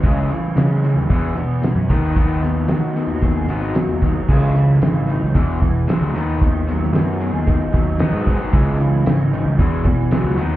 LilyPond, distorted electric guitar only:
\new Staff \with { instrumentName = "Distorted electric guitar" } { \clef bass \time 4/4 \key e \major \tempo 4 = 113 <cis e gis>8 <cis e>8 <cis e>8 <cis e>8 <e, b, e>8 <e, b,>8 <e, b,>8 <dis b dis'>8 | <dis b dis'>8 <dis b>8 <dis b>8 <dis b>8 <dis b>8 <dis b dis'>8 <dis b>8 <dis b>8 | <cis e gis>8 <cis e>8 <cis e>8 <cis e>8 <e, b, e>8 <e, b,>8 <e, b, e>8 <dis b dis'>8 | <dis b>8 <dis b>8 <dis b>8 <dis b>8 <dis b>8 <dis b>8 <dis b dis'>8 <dis b dis'>8 |
<cis e gis>8 <cis e>8 <cis e>8 <cis e>8 <e, b, e>8 <e, b,>8 <e, b, e>8 <dis b dis'>8 | }